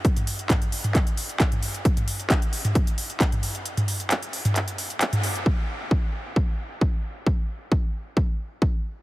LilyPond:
\new DrumStaff \with { instrumentName = "Drums" } \drummode { \time 4/4 \tempo 4 = 133 <hh bd>16 <hh toml>16 hho16 hh16 <hc hh bd toml>16 hh16 hho16 <hh toml>16 <hc hh bd>16 hh16 hho16 hh16 <hc hh bd>16 <hh toml>16 hho16 hh16 | <hh bd>16 <hh toml>16 hho16 hh16 <hc hh bd>16 hh16 hho16 <hh toml>16 <hh bd>16 hh16 hho16 hh16 <hc hh bd>16 <hh toml>16 hho16 hh16 | hh16 <hh toml>16 hho16 hh16 <hc hh>16 hh16 hho16 <hh toml>16 <hc hh>16 hh16 hho16 hh16 <hc hh>16 <hh toml>16 hho16 hh16 | bd4 bd4 bd4 bd4 |
bd4 bd4 bd4 bd4 | }